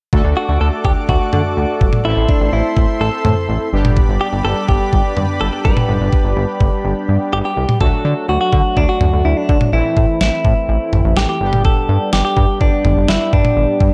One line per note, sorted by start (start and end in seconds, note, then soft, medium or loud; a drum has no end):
0.13 0.22 D2 loud
0.13 2.01 A3 medium
0.13 2.01 D4 medium
0.13 2.01 F#4 medium
0.13 2.01 A4 medium
0.13 3.69 A4 medium
0.13 2.03 D5 medium
0.13 2.03 F#5 medium
0.13 2.03 D6 medium
0.13 kick loud
0.25 0.34 D2 loud
0.37 0.61 F#4 medium
0.49 0.58 D2 medium
0.61 0.70 D2 loud
0.61 0.67 A4 medium
0.85 0.94 D2 loud
0.85 0.92 G4 medium
0.85 kick medium
1.09 1.18 D2 loud
1.09 1.77 F#4 medium
1.09 kick medium
1.33 1.42 D3 loud
1.33 mid tom medium
1.57 1.66 D2 medium
1.81 1.90 G1 medium
1.81 kick medium
1.93 mid tom medium
2.05 2.14 A1 loud
2.05 3.69 A3 medium
2.05 3.69 C4 medium
2.05 3.69 E4 medium
2.05 2.30 E4 medium
2.05 3.69 A4 medium
2.05 3.71 C5 medium
2.05 3.71 E5 medium
2.05 3.71 C6 medium
2.17 2.26 A1 loud
2.29 2.51 D4 medium
2.29 kick medium
2.41 2.50 A1 loud
2.53 2.62 A1 loud
2.53 3.02 E4 medium
2.77 2.86 A1 loud
2.77 kick medium
3.01 3.10 A1 loud
3.01 3.69 A4 medium
3.25 3.34 A2 medium
3.25 mid tom medium
3.49 3.58 A1 medium
3.73 4.00 G1 medium
3.73 7.53 G3 medium
3.73 7.53 B3 medium
3.73 7.53 D4 medium
3.73 7.53 G4 medium
3.73 7.77 G4 medium
3.73 7.77 B4 medium
3.73 7.77 D5 medium
3.73 7.77 B5 medium
3.85 mid tom medium
3.97 kick loud
4.09 4.18 G1 medium
4.21 4.27 G4 medium
4.33 4.42 G1 medium
4.45 4.54 G1 loud
4.45 4.67 A4 loud
4.68 4.78 G1 loud
4.68 5.13 G4 medium
4.68 kick medium
4.93 5.02 G1 loud
4.93 kick medium
5.17 5.26 G2 medium
5.17 mid tom medium
5.41 5.50 G1 loud
5.41 5.47 A4 medium
5.65 5.74 F#1 medium
5.65 7.29 B4 loud
5.65 kick medium
5.77 mid tom medium
5.89 5.98 G1 loud
6.01 6.10 G1 loud
6.13 kick medium
6.25 6.34 G1 medium
6.37 6.46 G1 loud
6.60 6.70 G1 loud
6.60 kick medium
6.85 6.94 G1 loud
7.09 7.18 G2 medium
7.33 7.42 G1 loud
7.33 7.38 G4 loud
7.45 7.81 G4 medium
7.57 7.66 C2 medium
7.69 mid tom medium
7.81 7.90 D2 loud
7.81 9.69 F#3 medium
7.81 9.69 A3 medium
7.81 9.69 D4 medium
7.81 9.69 F#4 medium
7.81 8.29 A4 loud
7.81 kick medium
8.05 8.14 D3 loud
8.29 8.38 D2 loud
8.29 8.40 F#4 medium
8.41 8.78 F#4 loud
8.53 8.62 D3 loud
8.53 kick medium
8.77 8.86 D2 loud
8.77 8.88 D4 medium
8.77 kick medium
8.89 9.26 F#4 loud
9.01 9.10 D2 medium
9.01 mid tom medium
9.13 9.22 D2 medium
9.25 9.34 D2 loud
9.25 9.37 E4 medium
9.37 9.73 D4 medium
9.49 9.58 D3 medium
9.49 kick medium
9.61 mid tom medium
9.73 9.82 A1 loud
9.73 11.37 E3 medium
9.73 11.37 A3 medium
9.73 11.37 C4 medium
9.73 11.37 E4 medium
9.73 10.20 E4 medium
9.97 10.06 A2 loud
9.97 kick medium
10.21 10.30 A1 loud
10.21 11.20 E4 medium
10.21 snare loud
10.45 10.54 A2 loud
10.45 kick medium
10.69 10.78 A1 loud
10.93 11.02 A1 loud
10.93 mid tom medium
11.05 11.14 A1 medium
11.17 11.26 A1 loud
11.17 11.28 G4 medium
11.17 snare loud
11.29 11.62 G4 medium
11.41 11.68 G1 loud
11.41 13.94 G3 medium
11.41 13.94 B3 medium
11.41 13.94 D4 medium
11.41 13.94 G4 medium
11.53 mid tom medium
11.65 12.10 A4 medium
11.65 kick loud
11.89 11.98 G2 loud
12.13 12.22 G1 loud
12.13 12.24 G4 medium
12.13 snare loud
12.25 12.58 G4 medium
12.37 12.46 G2 loud
12.37 kick medium
12.61 12.70 G1 loud
12.61 13.10 D4 medium
12.61 kick medium
12.85 12.94 G1 loud
12.85 mid tom medium
12.97 13.06 G1 medium
13.08 13.18 G1 loud
13.08 13.31 E4 medium
13.08 snare loud
13.33 13.42 G2 loud
13.33 13.94 D4 medium
13.33 kick medium
13.45 mid tom medium
13.57 13.66 G1 loud
13.80 13.90 G2 loud
13.80 kick medium